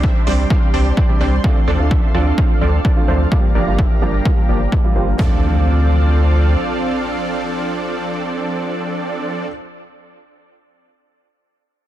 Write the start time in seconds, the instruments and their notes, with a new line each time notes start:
Already playing: sub bass C2, analog synth pad G4 C5 D5 C6, downlifter
0.03 supersaw synth G3 C4 D4 C5 E5, kick
0.26 sub bass C2, grand piano C3 G3 C4 D4 G4, supersaw synth G3 C4 D4 C5 D5, open hi-hat
0.50 supersaw synth G3 C4 D4 C5 F5, kick
0.74 sub bass C2, supersaw synth G3 C4 D4 C5 D5, open hi-hat
0.97 supersaw synth G3 C4 D4 C5 D5, kick
1.08 grand piano C3 G3 C4 D4 G4
1.20 sub bass C2, grand piano G3 C4 D4 G4, supersaw synth G3 C4 D4 C5 D5, open hi-hat
1.43 grand piano D3 A3 C4 D4 F4, supersaw synth F3 C4 D4 A4 D5, analog synth pad A4 D5 F5, kick
1.67 sub bass D2, supersaw synth F3 C4 D4 A4 D5, open hi-hat
1.79 sub bass D2, grand piano D3 A3 C4 D4 F4
1.91 supersaw synth C4 D4 A4 E5, kick
2.14 sub bass D2, grand piano D3 A3 C4 D4 F4, supersaw synth F3 C4 D4 A4 D5, open hi-hat
2.38 supersaw synth F3 C4 D4 A4 F5, kick
2.61 sub bass D2, supersaw synth F3 C4 D4 A4 D5, open hi-hat
2.85 supersaw synth F3 C4 D4 A4 D5, kick
2.96 grand piano D3 A3 C4 D4 F4
3.07 sub bass D2, supersaw synth F3 C4 D4 A4 C5, grand piano A3 C4 D4 F4, open hi-hat
3.31 grand piano G2 G3 A#3 D4 F4, supersaw synth F3 A#3 D4 G4 D5, analog synth pad G4 A#5, kick
3.55 sub bass G1, supersaw synth F3 A#3 D4 G4 D5, open hi-hat
3.66 sub bass G1, grand piano G2 G3 A#3 D4 F4
3.79 supersaw synth F3 A#3 G4 E5, kick
4.01 sub bass G1, grand piano G2 G3 A#3 D4 F4, supersaw synth F3 A#3 D4 G4 D5
4.25 supersaw synth F3 A#3 D4 G4 F5, kick
4.49 sub bass G1, supersaw synth F3 A#3 D4 G4 D5
4.72 supersaw synth F3 A#3 D4 G4 D5, kick
4.83 grand piano G2 G3 A#3 D4 F4
4.95 sub bass G1, supersaw synth F3 A#3 D4 G4 C5, grand piano G3 A#3 D4 F4
5.17 sub bass D2, supersaw synth F3 C4 D4 A4 D5, grand piano A3 C4 D4 F4, analog synth pad C4 F4 A4 D5 F5, kick, impact